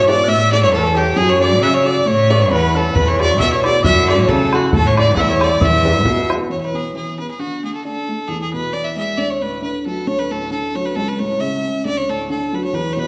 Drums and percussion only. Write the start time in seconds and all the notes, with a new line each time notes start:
2.96 bodhran
3.20 bodhran
3.40 bodhran
3.64 bodhran
3.84 bodhran
4.08 bodhran
4.29 bodhran
4.53 bodhran
4.73 bodhran
4.97 bodhran
5.17 bodhran
5.41 bodhran
5.61 bodhran
6.05 bodhran
6.30 bodhran